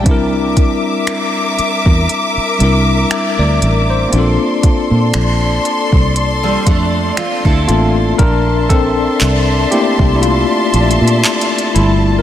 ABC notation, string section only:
X:1
M:4/4
L:1/8
Q:"Swing 16ths" 1/4=59
K:Bblyd
V:1 name="String section"
[Bed']8 | [Adc']8 | [deac']8 |]